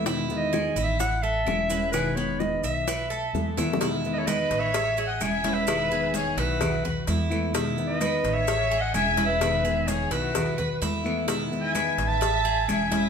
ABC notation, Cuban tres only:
X:1
M:4/4
L:1/8
Q:1/4=128
K:E
V:1 name="Cuban tres"
E2 G E2 A e B | G B2 e B A2 e | E2 B2 e G2 E | B G2 E2 B E2 |
E2 B2 e G2 E | B G2 E2 B E2 | E2 B2 e G2 E |]